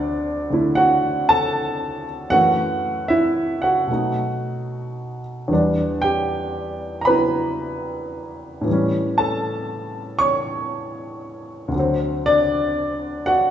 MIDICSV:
0, 0, Header, 1, 2, 480
1, 0, Start_track
1, 0, Key_signature, 2, "major"
1, 0, Tempo, 774194
1, 1438, Time_signature, 4, 2, 24, 8
1, 1920, Tempo, 795756
1, 5280, Tempo, 765306
1, 8315, End_track
2, 0, Start_track
2, 0, Title_t, "Grand piano"
2, 0, Program_c, 0, 0
2, 0, Control_c, 0, 64, 127
2, 0, Note_on_c, 0, 38, 60
2, 0, Note_on_c, 0, 50, 53
2, 0, Note_on_c, 0, 60, 55
2, 0, Note_on_c, 0, 62, 61
2, 0, Note_on_c, 0, 66, 59
2, 0, Note_on_c, 0, 74, 75
2, 302, Note_off_c, 0, 50, 0
2, 311, Note_on_c, 0, 50, 46
2, 323, Note_on_c, 0, 57, 44
2, 331, Note_on_c, 0, 64, 50
2, 456, Note_off_c, 0, 62, 0
2, 467, Note_on_c, 0, 78, 88
2, 470, Note_off_c, 0, 66, 0
2, 479, Note_on_c, 0, 66, 74
2, 489, Note_off_c, 0, 74, 0
2, 777, Note_off_c, 0, 78, 0
2, 784, Note_off_c, 0, 66, 0
2, 799, Note_on_c, 0, 81, 101
2, 807, Note_on_c, 0, 69, 66
2, 1259, Note_off_c, 0, 81, 0
2, 1263, Note_off_c, 0, 69, 0
2, 1428, Note_on_c, 0, 42, 53
2, 1428, Note_on_c, 0, 78, 98
2, 1431, Note_off_c, 0, 38, 0
2, 1435, Note_on_c, 0, 52, 46
2, 1436, Note_off_c, 0, 50, 0
2, 1437, Note_off_c, 0, 57, 0
2, 1438, Note_on_c, 0, 66, 82
2, 1442, Note_off_c, 0, 60, 0
2, 1446, Note_off_c, 0, 64, 0
2, 1446, Note_on_c, 0, 57, 48
2, 1447, Control_c, 0, 64, 0
2, 1549, Control_c, 0, 64, 127
2, 1894, Note_off_c, 0, 66, 0
2, 1912, Note_on_c, 0, 76, 80
2, 1923, Note_on_c, 0, 64, 63
2, 1929, Note_off_c, 0, 78, 0
2, 2225, Note_off_c, 0, 64, 0
2, 2233, Note_on_c, 0, 78, 80
2, 2246, Note_on_c, 0, 66, 64
2, 2252, Note_off_c, 0, 76, 0
2, 2388, Note_on_c, 0, 47, 41
2, 2394, Note_off_c, 0, 42, 0
2, 2397, Note_off_c, 0, 52, 0
2, 2400, Note_off_c, 0, 57, 0
2, 2400, Note_on_c, 0, 54, 39
2, 2405, Control_c, 0, 64, 0
2, 2410, Note_on_c, 0, 57, 41
2, 2418, Note_on_c, 0, 63, 48
2, 2525, Control_c, 0, 64, 127
2, 3186, Note_off_c, 0, 78, 0
2, 3193, Note_off_c, 0, 66, 0
2, 3358, Note_on_c, 0, 40, 48
2, 3364, Note_off_c, 0, 47, 0
2, 3364, Note_on_c, 0, 52, 45
2, 3370, Note_off_c, 0, 54, 0
2, 3375, Note_off_c, 0, 57, 0
2, 3377, Control_c, 0, 64, 0
2, 3378, Note_on_c, 0, 55, 42
2, 3379, Note_off_c, 0, 63, 0
2, 3388, Note_on_c, 0, 62, 55
2, 3497, Control_c, 0, 64, 127
2, 3681, Note_on_c, 0, 79, 82
2, 3696, Note_on_c, 0, 67, 58
2, 4275, Note_off_c, 0, 67, 0
2, 4283, Note_on_c, 0, 82, 66
2, 4305, Note_on_c, 0, 83, 84
2, 4310, Note_off_c, 0, 79, 0
2, 4315, Note_on_c, 0, 54, 36
2, 4318, Note_on_c, 0, 71, 66
2, 4319, Note_off_c, 0, 82, 0
2, 4321, Note_on_c, 0, 59, 35
2, 4331, Note_on_c, 0, 64, 43
2, 5243, Note_off_c, 0, 83, 0
2, 5247, Note_on_c, 0, 45, 49
2, 5249, Note_off_c, 0, 71, 0
2, 5259, Note_off_c, 0, 52, 0
2, 5268, Note_on_c, 0, 52, 47
2, 5272, Note_off_c, 0, 54, 0
2, 5273, Note_off_c, 0, 40, 0
2, 5275, Note_off_c, 0, 59, 0
2, 5280, Note_off_c, 0, 64, 0
2, 5283, Note_off_c, 0, 55, 0
2, 5286, Control_c, 0, 64, 0
2, 5288, Note_off_c, 0, 62, 0
2, 5293, Note_on_c, 0, 55, 48
2, 5318, Note_on_c, 0, 61, 54
2, 5404, Control_c, 0, 64, 127
2, 5600, Note_on_c, 0, 81, 75
2, 5612, Note_on_c, 0, 69, 62
2, 6215, Note_off_c, 0, 81, 0
2, 6221, Note_off_c, 0, 69, 0
2, 6232, Note_on_c, 0, 85, 90
2, 6247, Note_on_c, 0, 73, 69
2, 7168, Note_off_c, 0, 85, 0
2, 7170, Note_on_c, 0, 38, 50
2, 7175, Note_off_c, 0, 73, 0
2, 7183, Note_off_c, 0, 45, 0
2, 7194, Note_off_c, 0, 52, 0
2, 7196, Note_on_c, 0, 50, 49
2, 7206, Note_off_c, 0, 55, 0
2, 7206, Control_c, 0, 64, 0
2, 7216, Note_on_c, 0, 54, 49
2, 7219, Note_off_c, 0, 61, 0
2, 7240, Note_on_c, 0, 60, 60
2, 7320, Control_c, 0, 64, 127
2, 7533, Note_on_c, 0, 62, 66
2, 7533, Note_on_c, 0, 74, 101
2, 8138, Note_off_c, 0, 62, 0
2, 8161, Note_on_c, 0, 78, 91
2, 8167, Note_on_c, 0, 66, 73
2, 8182, Note_off_c, 0, 74, 0
2, 8315, Note_off_c, 0, 38, 0
2, 8315, Note_off_c, 0, 50, 0
2, 8315, Note_off_c, 0, 54, 0
2, 8315, Note_off_c, 0, 60, 0
2, 8315, Note_off_c, 0, 66, 0
2, 8315, Note_off_c, 0, 78, 0
2, 8315, End_track
0, 0, End_of_file